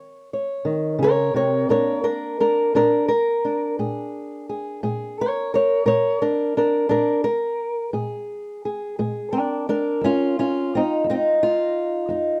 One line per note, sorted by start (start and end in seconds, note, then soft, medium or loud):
0.00 0.24 D#3 medium
0.00 0.32 C#5 soft
0.33 1.01 C#5 soft
0.65 1.00 D#3 medium
0.99 1.34 C#3 medium
0.99 1.35 A#4 medium
1.04 1.35 C#5 medium
1.34 1.69 C3 medium
1.34 1.69 A#4 medium
1.34 1.70 C#5 medium
1.69 2.32 A#2 medium
1.69 5.81 A#3 soft
1.69 2.03 D4 soft
1.69 2.02 A#4 medium
1.69 2.05 C#5 medium
2.04 2.39 D4 medium
2.04 2.39 A#4 medium
2.40 2.74 D4 medium
2.40 2.74 A#4 medium
2.75 3.37 A#2 medium
2.75 3.09 D4 medium
2.75 3.07 A#4 medium
3.08 3.78 A#4 medium
3.45 5.82 D4 soft
3.79 4.41 A#2 medium
3.79 4.48 G#4 soft
4.49 4.82 G#4 soft
4.83 5.45 A#2 medium
4.83 5.20 G#4 soft
5.20 5.53 A#4 medium
5.20 5.53 C#5 medium
5.54 5.85 A#4 medium
5.54 5.86 C#5 medium
5.86 6.48 A#2 medium
5.86 6.20 A#4 medium
5.86 6.21 C#5 medium
6.22 6.55 D4 medium
6.22 6.55 A#4 medium
6.57 6.88 D4 medium
6.57 6.89 A#4 medium
6.89 7.52 A#2 medium
6.89 7.24 D4 medium
6.89 7.23 A#4 medium
7.24 7.93 A#4 medium
7.93 8.55 A#2 medium
7.93 8.63 G#4 soft
8.65 8.98 G#4 soft
8.99 9.60 A#2 medium
8.99 9.33 G#4 soft
9.33 9.67 D4 medium
9.33 9.67 A#4 medium
9.69 10.02 D4 medium
9.69 10.02 A#4 medium
10.01 10.63 F2 medium
10.01 10.37 C#4 medium
10.01 10.38 F4 medium
10.39 10.72 C#4 medium
10.39 11.42 F4 medium
10.75 10.78 C4 medium
10.75 11.08 D#4 medium
11.04 11.67 F2 medium
11.10 11.13 C4 medium
11.10 12.08 D#4 medium
11.43 12.40 F4 medium
12.09 12.40 F2 medium
12.09 12.40 D#4 soft